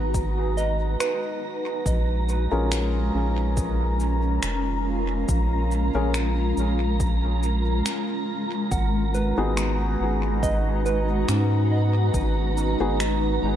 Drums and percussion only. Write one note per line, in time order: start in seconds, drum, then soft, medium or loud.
0.14 kick medium
0.14 cabasa soft
0.58 cabasa soft
1.00 finger snap medium
1.00 cabasa soft
1.86 kick loud
1.86 cabasa soft
2.29 cabasa soft
2.72 finger snap medium
2.72 cabasa soft
3.57 kick loud
3.57 cabasa soft
4.00 cabasa soft
4.43 finger snap medium
4.43 cabasa medium
5.28 kick loud
5.28 cabasa soft
5.71 cabasa soft
6.14 finger snap medium
6.14 cabasa soft
6.57 cabasa soft
7.00 kick loud
7.00 cabasa soft
7.43 cabasa soft
7.86 finger snap medium
7.86 cabasa soft
8.71 kick loud
8.71 cabasa soft
9.14 cabasa soft
9.57 finger snap medium
9.57 cabasa soft
10.43 kick loud
10.43 cabasa soft
10.86 cabasa soft
11.29 finger snap medium
11.29 cabasa soft
12.14 kick medium
12.14 cabasa soft
12.57 cabasa soft
13.00 finger snap medium
13.00 cabasa soft